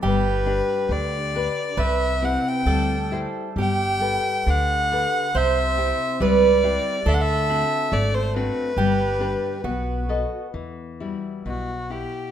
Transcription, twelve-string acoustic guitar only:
\new Staff \with { instrumentName = "Twelve-string acoustic guitar" } { \time 2/4 \key g \major \tempo 4 = 68 g'2 | b'4 a'4 | g'2 | c''4 b'4 |
a'2 | g'4 fis'4 | \key e \minor r2 | }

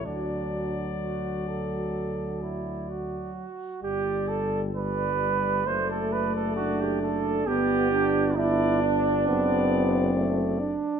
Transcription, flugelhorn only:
\new Staff \with { instrumentName = "Flugelhorn" } { \time 4/4 \key d \major \tempo 4 = 66 d'4 fis'8 a'4 e'8 fis'4 | \key g \major g'8 a'8 b'4 c''16 a'16 b'16 a'16 fis'16 g'16 a'8 | g'4 d'2~ d'8 r8 | }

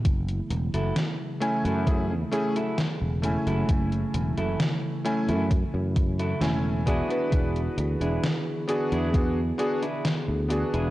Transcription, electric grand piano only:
\new Staff \with { instrumentName = "Electric grand piano" } { \time 4/4 \key fis \minor \tempo 4 = 66 r4. <a cis' e' gis''>8 <a cis' e' gis'>16 r16 <a cis' e' gis'>16 r8. <a cis' e' gis''>8~ | <a cis' e' gis''>4. <a cis' e' gis''>8 r4 <a cis' e' gis''>8 <b d' fis' gis'>16 <b d' fis' b'>16~ | <b d' fis' b'>4. <b d' fis' gis'>8 <b d' fis' gis'>16 r16 <b d' fis' gis'>16 r8. <b d' fis' gis'>8 | }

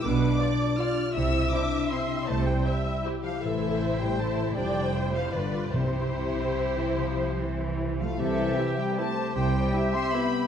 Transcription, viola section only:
\new Staff \with { instrumentName = "Viola section" } { \time 3/4 \key c \major \tempo 4 = 155 b'4 d''4 d''4 | e''2. | c''4 e''4 g'4 | a'4 c''2 |
d''4 c''4 b'4 | c''2.~ | c''2~ c''8 r8 | r4 <e' g'>4 <e' g'>4 |
r4 <e' g'>4 <e' g'>4 | }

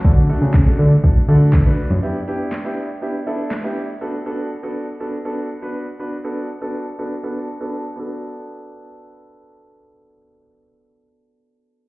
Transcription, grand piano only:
\new Staff \with { instrumentName = "Grand piano" } { \time 4/4 \key b \minor \tempo 4 = 121 <a d' fis' a'>16 r16 <a d' fis' a'>8 r16 <a d' fis' a'>8 r16 <a d' fis' a'>16 r16 <a d' fis' a'>8 r16 <a d' fis' b'>8 r16 | <b d' e' g'>16 r16 <b d' e' g'>8 r16 <b d' e' g'>8 r16 <b d' e' g'>16 r16 <b d' e' a'>8 r16 <b d' e' g'>8 r16 | <b d' fis' a'>16 r16 <b d' fis' a'>8 r16 <b d' fis' a'>8 r16 <b d' fis' a'>16 r16 <b d' fis' a'>8 r16 <b d' fis' b'>8 r16 | <b d' fis' b'>16 r16 <b d' fis' a'>8 r16 <b d' fis' a'>8 r16 <b d' fis' a'>16 r16 <b d' fis' a'>8 r16 <b d' fis' a'>8 r16 |
<b d' fis' a'>1~ | <b d' fis' a'>1 | }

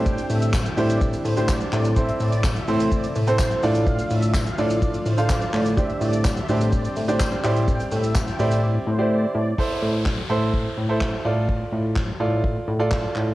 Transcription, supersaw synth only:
\new Staff \with { instrumentName = "Supersaw synth" } { \time 4/4 \key a \minor \tempo 4 = 126 g''8 e''8 r16 g''16 r16 d''16 r8 c''8 d''16 r16 d''16 r16 | e''8 d''8 r16 e''16 r16 c''16 d''16 r8 c''8 r8. | f''8 e''8 r16 f''16 r16 d''16 r8 c''8 d''16 r16 d''16 r16 | e''8 d''8 r16 e''16 r16 c''16 d''16 r8 c''8 r8. |
g''8 e''8 r16 g''16 r16 d''16 r8 c''8 d''16 r16 d''16 r16 | r1 | r1 | }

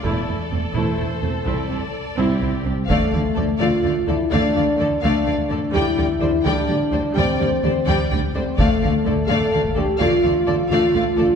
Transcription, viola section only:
\new Staff \with { instrumentName = "Viola section" } { \time 12/8 \key d \minor \tempo 4. = 84 <a e'>8 <a e'>8 <a c'>8 <a e'>8 <a e'>8 <a c'>8 <c' e'>8 <c' e'>8 r8 <c' e'>8 <c' e'>8 <c' d'>8 | a8 a8 a8 a8 a8 a8 a8 a8 a8 a8 a8 a8 | g8 g8 g8 g8 g8 g8 g8 g8 g8 g8 g8 g8 | a8 a8 a8 a8 a8 a8 a8 a8 a8 a8 a8 a8 | }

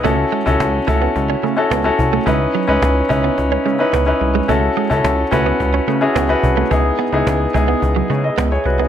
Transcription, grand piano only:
\new Staff \with { instrumentName = "Grand piano" } { \time 4/4 \key a \lydian \tempo 4 = 108 <cis' e' fis' a'>8 r16 <cis' e' fis' a'>8 r16 <cis' e' fis' a'>4 r16 <cis' e' fis' a'>8 <cis' e' fis' a'>8 r16 | <cis' dis' e' b'>8 r16 <cis' dis' e' b'>8 r16 <cis' dis' e' b'>4 r16 <cis' dis' e' b'>8 <cis' dis' e' b'>8 r16 | <cis' e' fis' a'>8 r16 <cis' e' fis' a'>8 r16 <cis' e' fis' b'>4 r16 <cis' e' fis' gis'>8 <cis' e' fis' b'>8 r16 | <b dis' e' gis'>8 r16 <b dis' e' gis'>8 r16 <b dis' e' gis'>4 r16 <gis' dis''>8 <gis' cis''>16 <fis' b'>16 <dis' gis'>16 | }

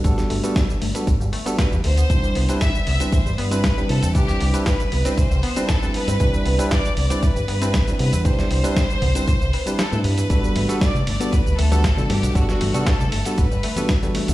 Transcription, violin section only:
\new Staff \with { instrumentName = "Violin section" } { \time 4/4 \key c \lydian \tempo 4 = 117 r2. b'8 c''8~ | c''4 e''8 e''8 c''8 b'4 a'8 | g'4 b'4 c''4 a'8 b'8~ | b'4 d''8 d''8 b'4. b'8 |
c''2. a'8 b'8~ | b'4 d''8 d''8 b'8 a'4 g'8 | fis'4 a'4 b'4. r8 | }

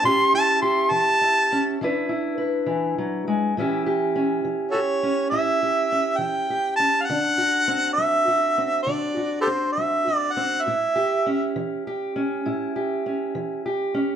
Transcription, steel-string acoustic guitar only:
\new Staff \with { instrumentName = "Steel-string acoustic guitar" } { \time 12/8 \key a \mixolydian \tempo 4. = 68 << { <cis' e' g'>8 e'8 g'4 e'8 cis'8 <d' e' b'>8 e'8 b'2 | <e cis' e' g'>8 g'8 cis'4 g'8 cis'8 e'8 g'8 cis'4 g'8 cis'8 | d'8 fis'8 c'4 fis'8 c'8 d'8 fis'8 c'4 fis'8 c'8 | e'8 g'8 cis'4 g'8 cis'8 e'8 g'8 cis'4 g'8 cis'8 | } \\ { a,4 r8 e4 r8 e4 r8 e8 fis8 gis8 | a,4 r8 e4 r8 a,4 r8 e4 r8 | d4 r8 fis4 r8 d4 r8 fis4 r8 | a,4 r8 e4 r8 a,4 r8 e4 r8 | } >> }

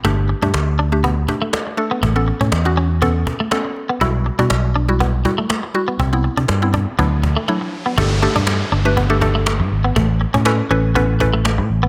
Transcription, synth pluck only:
\new Staff \with { instrumentName = "Synth pluck" } { \time 4/4 \key g \major \tempo 4 = 121 <a d' g'>8 r16 <a d' g'>8. r16 <a d' g'>8 r16 <a d' g'>8. r16 <a d' a'>8 | r16 <b cis' a'>8. r16 <b cis' fis'>8 r16 <b cis' a'>8. r16 <b cis' a'>8. r16 | <g e' fis'>8 r16 <g e' fis'>8. r16 <g e' fis'>8 r16 <g e' fis'>8. r16 <g e' fis'>8 | r16 <b c' e'>8. r16 <b c' e'>8 r16 <fis d' e'>8. r16 <fis d' e'>8. r16 |
<a d' g' a'>8 <a d' g' a'>4 r16 <a d' g' b'>8 <a d' g' a'>16 <a d' g' a'>4. | r4 <cis' e' a' b'>8 <cis' e' a' b'>8 <cis' e' a' b'>8 <cis' e' a' b'>4~ <cis' e' a' b'>16 r16 | }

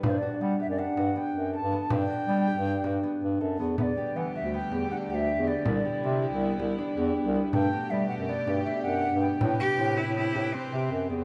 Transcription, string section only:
\new Staff \with { instrumentName = "String section" } { \time 5/4 \key g \major \tempo 4 = 160 << { r1 r4 | r1 r4 | <g a g'>1~ <g a g'>4 | <b e'>1~ <b e'>4 |
<b, a g'>1~ <b, a g'>4 | <c g' b'>1~ <c g' b'>4 | } \\ { r1 r4 | r1 r4 | d1~ d4~ | d1~ d4 |
r1 r4 | r1 r4 | } >> }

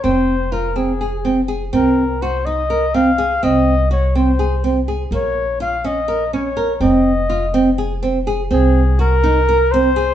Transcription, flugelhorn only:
\new Staff \with { instrumentName = "Flugelhorn" } { \time 7/8 \key f \phrygian \tempo 4 = 124 c''4 bes'8 aes'4. r8 | bes'4 c''8 ees''4 f''4 | ees''4 des''8 c''4. r8 | des''4 f''8 ees''4 des''4 |
ees''2 r4. | aes'4 bes'4. c''4 | }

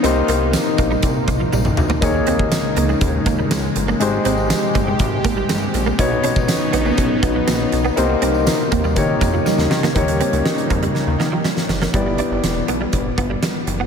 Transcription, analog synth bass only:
\new Staff \with { instrumentName = "Analog synth bass" } { \clef bass \time 4/4 \key ees \mixolydian \tempo 4 = 121 c,8 c,8. r16 bes,,8 c,8 c,8 bes,,8 d,8 | ees,8 ees,8. r16 des,8 ees,8 ees,8 des,8 g,,8 | aes,,8 aes,,8. r16 g,,8 aes,,8 aes,,8 g,,8 bes,,8 | b,,8 b,,8. r16 bes,,8 b,,8 b,,8 bes,,8 b,,8 |
c,8 c,8. r16 ees,8 ees8 f,8 ees,16 ees,16 ees8 | ees,8. des,16 r8 f,8 r16 ees,16 ees8 r8 ges,,8 | g,,8. g,,16 e,,8 b,,8 g,,8 g,,8 r8 ges,,8 | }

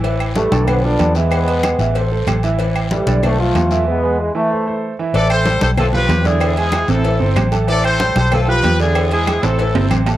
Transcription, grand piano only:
\new Staff \with { instrumentName = "Grand piano" } { \time 4/4 \key a \minor \tempo 4 = 189 <e e' e''>4 <g g' a'>8 <d d' d''>4 <f f' a'>4 <e e' e''>8~ | <e e' e''>8 <gis gis' b'>4 <e e' e''>8 <a a' c''>8 <a a' c''>4 <e e' e''>8 | <e e' e''>4 <g g' a'>8 <d d' d''>4 <f f' a'>4 <e e' e''>8~ | <e e' e''>8 <gis gis' b'>4 <e e' e''>8 <a a' c''>8 <a a' c''>4 <e e' e''>8 |
<e e' e''>4 <g g' g''>4 <a a' a''>8 <f f' f''>4 <d d' d''>8~ | <d d' d''>8 <gis gis' gis''>4 <c c' c''>8 <e e' e''>8 <c c' c''>4 <a a' a''>8 | <e e' e''>4 <g g' g''>4 <a a' a''>8 <f f' f''>4 <d d' d''>8~ | <d d' d''>8 <gis gis' gis''>4 <c c' c''>8 <e e' e''>8 <c c' c''>4 <a a' a''>8 | }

